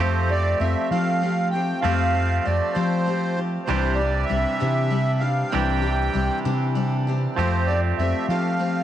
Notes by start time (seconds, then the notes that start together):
Already playing: F3 C5
0.00 F2 A3 C4 F4 G4
0.29 C4 F4 G4 D5
0.60 F2 A3 C4 F4 G4 E5
0.91 F3 A3 C4 F4 G4 F5
1.22 A3 C4 F4 G4
1.51 G4 G5
1.55 C4 F4
1.81 F2 F3 A3 F5
1.85 C4 F4 G4
2.15 C4 F4 G4
2.45 F2 A3 C4 F4 G4 D5
2.73 F3 A3 C4 F4 G4 C5
3.06 A3 C4 F4 G4
3.37 C4 F4 G4
3.65 C2 C3 E3 G3 C4 D4 C5
3.69 G4
3.94 D5
3.99 G3 C4 D4 G4
4.25 E5
4.29 C2 G3 C4 D4 G4
4.60 C3 E3 G3 C4 D4 G4
4.90 G3 C4 D4 G4
5.20 G3 C4 D4 G4 F5
5.50 C3 E3 G3 C4 D4 G4 G5
5.54 C2
5.82 G3 C4 D4 G4
6.13 C2 G3 C4 D4 G4
6.45 C3 E3 G3 C4 D4 G4
6.75 G3 C4 D4 G4
7.07 G3 C4 D4 G4
7.35 F2 F3 C4 C5
7.39 A3 F4 G4
7.66 F4 G4 D5
7.71 C4
7.97 F2 A3 C4 F4 E5
8.02 G4
8.28 F3 A3 C4 F4 G4 F5
8.59 A3 C4 F4 G4